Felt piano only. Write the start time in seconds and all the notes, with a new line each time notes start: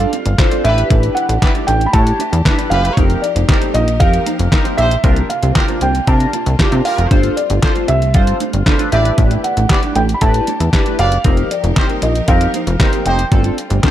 Already playing: F5
0.64 E5
1.15 F#5
1.67 G5
1.86 B5
1.93 A5
2.70 F5
3.22 D5
3.74 D#5
4.00 F5
4.77 E5
5.29 F5
5.82 G5
6.08 A5
6.85 F5
7.37 D5
7.88 E5
8.15 F5
8.92 E5
9.44 F#5
9.96 G5
10.14 B5
10.22 A5
10.99 F5
11.51 D5
12.03 D#5
12.28 F5
13.07 G5